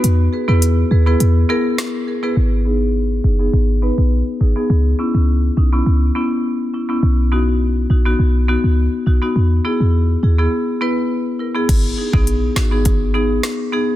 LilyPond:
<<
  \new Staff \with { instrumentName = "Marimba" } { \time 4/4 \key gis \minor \tempo 4 = 103 r8 <gis' b'>16 <b e' gis' b'>16 r8 <gis' b'>16 <b e' gis' b'>16 r8 <b e' gis' ais'>16 r8. <gis' ais'>16 <b e' gis' b'>16 | r8 <b dis' gis'>16 r8. <dis' gis'>16 <b dis' gis'>16 r8 <b dis' b'>16 r8. <dis' gis'>16 <b dis' gis'>16 | r8 <b cis' e'>16 r8. <cis' dis'>16 <b cis' e'>16 r8 <b cis' e'>16 r8. <cis' e'>16 <b cis' e'>16 | r8 <b dis' fis'>16 r8. <dis' fis'>16 <b dis' fis'>16 r8 <b dis' fis'>16 r8. <dis' fis'>16 <b dis' fis'>16 |
r8 <b e' gis'>16 r8. <e' gis'>16 <b e' gis'>16 r8 <b e' b'>16 r8. <e' ais'>16 <b e' gis'>16 | r8 <dis' gis'>16 <b dis' gis'>16 r8 <dis' fis'>16 <b dis' gis'>16 r8 <b dis' gis'>16 r8. <b dis' gis'>16 r16 | }
  \new Staff \with { instrumentName = "808-style bass" } { \clef bass \time 4/4 \key gis \minor e,8 r16 e,8. dis,8 e,8 r4. | gis,,4. fis,,8 gis,,8. ais,,8 r16 gis,,16 r16 | cis,8 r16 cis,8. b,,8 cis,8 r4. | b,,4. ais,,8 b,,8. cis,8 r16 b,,16 r16 |
e,8 r16 e,8. dis,8 r2 | gis,,8 r16 ais,,8. gis,,4. r4 | }
  \new DrumStaff \with { instrumentName = "Drums" } \drummode { \time 4/4 hh4 hh4 hh4 <hh ss sn>4 | r4 r4 r4 r4 | r4 r4 r4 r4 | r4 r4 r4 r4 |
r4 r4 r4 r4 | <cymc hh bd>8. bd16 hh8 <ss sn>8 <hh bd>4 <hh ss sn>4 | }
>>